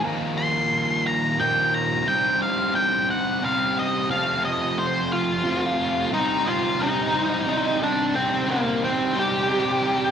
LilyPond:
<<
  \new Staff \with { instrumentName = "Lead electric guitar" } { \time 6/8 \key c \minor \tempo 4. = 59 << { r8 c'''4 bes''8 g''8 bes''8 | g''8 f''8 g''8 fis''8 f''8 ees''8 | f''8 ees''8 c''8 f''4 r8 | r2. |
r2. | } \\ { r2. | r2. | r4. <f' f''>4. | <ees' ees''>8 <f' f''>8 <ees' ees''>4. <d' d''>8 |
<c' c''>8 <bes bes'>8 <c' c''>8 <g' g''>4. | } >> }
  \new Staff \with { instrumentName = "Distorted electric guitar" } { \clef bass \time 6/8 \key c \minor <bes, ees f bes ees'>2 <bes, ees f bes ees'>4 | <c g c' ees'>2 <c g c' ees'>4 | <f, c f a c'>2 <f, c f a c'>4 | <c g c' ees'>8 <g c' ees'>4 <c g c' ees'>8 <c g c' ees'>8 <g c' ees'>8 |
<c g c' ees'>8 <g c' ees'>4 <c g c' ees'>8 <c g c' ees'>8 <g c' ees'>8 | }
>>